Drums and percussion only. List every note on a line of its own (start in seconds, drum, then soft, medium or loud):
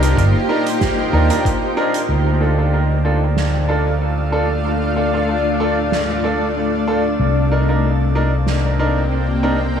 0.03 closed hi-hat medium
0.18 kick loud
0.18 closed hi-hat medium
0.67 closed hi-hat medium
0.81 kick loud
0.81 snare medium
0.81 closed hi-hat medium
1.30 closed hi-hat medium
1.45 kick loud
1.45 closed hi-hat medium
1.94 closed hi-hat medium
3.37 snare medium
5.92 snare medium
8.47 snare medium